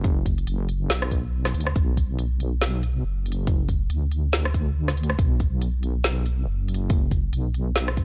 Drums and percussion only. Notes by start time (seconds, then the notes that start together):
0.04 kick, closed hi-hat
0.26 kick, closed hi-hat
0.38 closed hi-hat
0.47 closed hi-hat
0.69 closed hi-hat
0.90 snare, closed hi-hat
1.02 cross-stick
1.11 kick, closed hi-hat
1.45 cross-stick, snare
1.54 closed hi-hat
1.61 closed hi-hat
1.67 cross-stick
1.76 kick, closed hi-hat
1.97 kick, closed hi-hat
2.19 closed hi-hat
2.40 closed hi-hat
2.62 snare, closed hi-hat
2.83 closed hi-hat
3.26 closed hi-hat
3.32 closed hi-hat
3.47 kick, closed hi-hat
3.69 kick, closed hi-hat
3.90 closed hi-hat
4.12 closed hi-hat
4.33 snare, closed hi-hat
4.45 cross-stick
4.54 kick, closed hi-hat
4.88 cross-stick, snare
4.97 closed hi-hat
5.03 closed hi-hat
5.10 cross-stick
5.19 kick, closed hi-hat
5.40 kick, closed hi-hat
5.62 closed hi-hat
5.83 closed hi-hat
6.04 snare, closed hi-hat
6.26 closed hi-hat
6.68 closed hi-hat
6.74 closed hi-hat
6.90 kick, closed hi-hat
7.11 kick, closed hi-hat
7.33 closed hi-hat
7.54 closed hi-hat
7.76 snare, closed hi-hat
7.88 cross-stick
7.97 kick, closed hi-hat